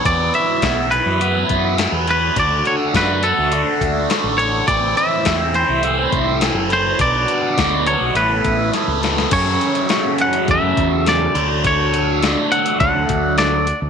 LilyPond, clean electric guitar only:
\new Staff \with { instrumentName = "Clean electric guitar" } { \time 4/4 \key d \lydian \tempo 4 = 103 d''8 e''4 b'4. r8 b'8 | d''8 cis''8 b'8 a'2 cis''8 | d''8 e''4 c''4. r8 c''8 | d''4. cis''8 b'4 r4 |
cis''4. fis''8 e''4 d''8. r16 | cis''4 r8 fis''8 fis''4 d''8. r16 | }